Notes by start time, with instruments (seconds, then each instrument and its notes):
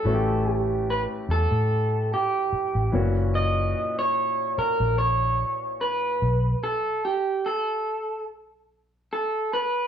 Already playing: clean electric guitar A4
0.04 fingered electric bass A1, grand piano E3 A3 C#4 F#4
0.14 grand piano G4
0.52 clean electric guitar G4
0.90 clean electric guitar B4
1.29 fingered electric bass E2, clean electric guitar A4
1.51 fingered electric bass A2
2.14 clean electric guitar G4
2.53 muted fingered electric bass stroke
2.75 fingered electric bass A1
2.92 fingered electric bass F#1, grand piano A#2 E3 C#4 F#4
3.35 clean electric guitar D#5
3.99 clean electric guitar C#5
4.58 clean electric guitar A#4, muted fingered electric bass stroke
4.80 fingered electric bass A#1
4.98 clean electric guitar C#5
5.81 clean electric guitar B4
6.22 fingered electric bass B1
6.64 clean electric guitar A4
7.05 clean electric guitar G4
7.46 clean electric guitar A4
9.13 clean electric guitar A4
9.53 clean electric guitar B4